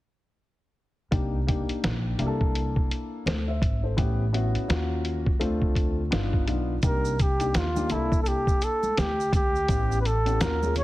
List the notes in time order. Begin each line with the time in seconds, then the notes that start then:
1.11 C2 A#3 D4 D#4 G4, kick, closed hi-hat
1.47 A#3 D4 D#4 G4, kick, closed hi-hat
1.69 muted upright bass stroke, closed hi-hat
1.83 A#1, snare, closed hi-hat
2.19 C2 A#3 D4 E4 G4, closed hi-hat
2.26 A4
2.41 kick
2.55 closed hi-hat
2.76 kick
2.91 closed hi-hat
3.26 D2 A4 C5, snare, closed hi-hat
3.48 C5 E5
3.62 G#1, kick, closed hi-hat
3.83 A4 C5
3.97 A1 B3 C#4 E4 G4, kick, closed hi-hat
4.33 B3 C#4 E4 F#4, closed hi-hat
4.55 muted upright bass stroke, closed hi-hat
4.68 D#2 A#3 C#4 F4 F#4, snare, closed hi-hat
5.05 closed hi-hat
5.26 kick
5.39 D2 A3 C4 D4 F4, closed hi-hat
5.62 kick
5.75 kick, closed hi-hat
6.11 G1 B3 D4 D#4 F4, snare, closed hi-hat
6.33 kick
6.47 B1 B3 D4 D#4 F4, closed hi-hat
6.83 C2 A#3 D4 D#4 G4 A#4, kick, closed hi-hat, maracas
7.05 maracas
7.19 G4, kick, closed hi-hat, maracas
7.40 A#3 D4 D#4 G4, closed hi-hat, maracas
7.54 D#2 F4, snare, closed hi-hat, maracas
7.75 A#3 D4 D#4 G4, high conga, maracas
7.89 C2 A#3 D4 E4 A4, closed hi-hat, low conga, maracas
8.12 kick, maracas
8.22 A4, maracas
8.26 G4, closed hi-hat
8.47 kick, maracas
8.62 A4, closed hi-hat, maracas
8.83 high conga, maracas
8.97 D2 G4, snare, closed hi-hat, maracas
9.20 maracas
9.33 G4, kick, closed hi-hat, high conga, low conga, maracas
9.56 maracas
9.68 A1 B3 C#4 E4 G4, kick, closed hi-hat, maracas
9.92 maracas
10.01 B4
10.05 A4, closed hi-hat, maracas
10.25 B3 C#4 E4 G4, closed hi-hat, maracas
10.40 D#2 A#3 C#4 F4 F#4 A#4, snare, closed hi-hat, maracas
10.62 A#3 C#4 F4 G#4, high conga, maracas
10.76 C#5, closed hi-hat, low conga, maracas